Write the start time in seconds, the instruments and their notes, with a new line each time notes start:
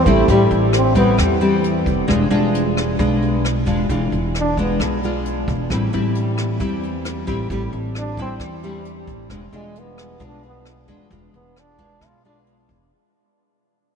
Already playing: nylon-string guitar E3
0.06 upright bass A1, nylon-string guitar G3 C4 E4, trombone A3, kick, closed hi-hat
0.28 upright bass A1, nylon-string guitar A2 G3 C4 E4, trombone G3, kick, closed hi-hat
0.50 upright bass A1, closed hi-hat
0.73 cross-stick, closed hi-hat
0.77 trombone C4
0.95 nylon-string guitar G3 C4 E4, trombone B3, kick, closed hi-hat
1.17 upright bass E2, nylon-string guitar E3, kick, cross-stick, closed hi-hat
1.41 nylon-string guitar G3 C4 E4, closed hi-hat
1.64 closed hi-hat
1.86 upright bass F1, kick, closed hi-hat
2.07 upright bass E1, nylon-string guitar E3 G#3 D4 F4, kick, cross-stick, closed hi-hat
2.30 upright bass E1, nylon-string guitar G#3 D4 F4, closed hi-hat
2.55 closed hi-hat
2.77 cross-stick, closed hi-hat
2.99 upright bass B1, nylon-string guitar B2 G#3 D4 F4, kick, closed hi-hat
3.22 closed hi-hat
3.45 cross-stick, closed hi-hat
3.66 upright bass E1, nylon-string guitar G#3 D4 F4, kick, closed hi-hat
3.89 upright bass E1, nylon-string guitar E3 G#3 D4 F4, kick, closed hi-hat
4.12 upright bass E1, closed hi-hat
4.35 cross-stick, closed hi-hat
4.40 trombone D4
4.57 nylon-string guitar G#3 D4 F4, trombone B3, kick, closed hi-hat
4.80 upright bass B1, nylon-string guitar B2, kick, cross-stick, closed hi-hat
5.03 nylon-string guitar G#3 D4 F4, closed hi-hat
5.26 closed hi-hat
5.48 upright bass E1, kick, closed hi-hat
5.70 upright bass A1, nylon-string guitar A2 G3 C4 E4, kick, cross-stick, closed hi-hat
5.93 upright bass A1, nylon-string guitar G3 C4 E4, closed hi-hat
6.15 closed hi-hat
6.37 cross-stick, closed hi-hat
6.60 upright bass E2, nylon-string guitar E3 G3 C4 E4, kick, closed hi-hat
6.83 closed hi-hat
7.05 cross-stick, closed hi-hat
7.27 upright bass A1, nylon-string guitar G3 C4 E4, kick, closed hi-hat
7.50 upright bass A1, nylon-string guitar A2 G3 C4 E4, kick, closed hi-hat
7.72 upright bass A1, closed hi-hat
7.95 trombone D4, cross-stick, closed hi-hat
8.17 nylon-string guitar G3 C4 E4, kick, closed hi-hat
8.22 trombone C4
8.40 upright bass E2, nylon-string guitar E3, kick, cross-stick, closed hi-hat
8.63 nylon-string guitar G3 C4 E4, closed hi-hat
8.85 closed hi-hat
9.07 upright bass A1, kick, closed hi-hat
9.30 upright bass E1, nylon-string guitar E3 G#3 D4 F4, kick, cross-stick, closed hi-hat
9.52 upright bass E1, nylon-string guitar G#3 D4 F4, trombone G#3, closed hi-hat
9.75 trombone B3, closed hi-hat
9.98 cross-stick, closed hi-hat
10.19 upright bass B1, nylon-string guitar B2 G#3 D4 F4, kick, closed hi-hat
10.25 trombone D4
10.43 trombone B3, closed hi-hat
10.65 cross-stick, closed hi-hat
10.88 upright bass E1, nylon-string guitar G#3 D4 F4, kick, closed hi-hat
11.10 upright bass E1, nylon-string guitar E3 G#3 D4 F4, kick, closed hi-hat
11.34 upright bass E1, trombone B3, closed hi-hat
11.56 trombone D4, cross-stick, closed hi-hat
11.78 nylon-string guitar G#3 D4 F4, kick, closed hi-hat
12.01 upright bass B1, nylon-string guitar B2, kick, cross-stick, closed hi-hat
12.06 trombone F4
12.24 nylon-string guitar G#3 D4 F4, trombone D4, closed hi-hat
12.47 closed hi-hat
12.69 upright bass E1, kick, closed hi-hat